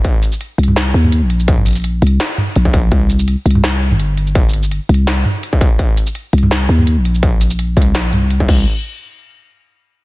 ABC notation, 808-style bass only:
X:1
M:4/4
L:1/16
Q:"Swing 16ths" 1/4=167
K:Cm
V:1 name="808-style bass" clef=bass
z6 C,,4 E,,3 B,,,3- | B,,,6 C,,2 z4 B,,,4 | C,,4- C,, z C,,4- C,, G,,,4- G,,,- | G,,,4- G,,, z C,,4 z6 |
z6 C,,4 E,,3 B,,,3- | B,,,6 C,,2 B,,,2 C,,4 C,,2 | z16 |]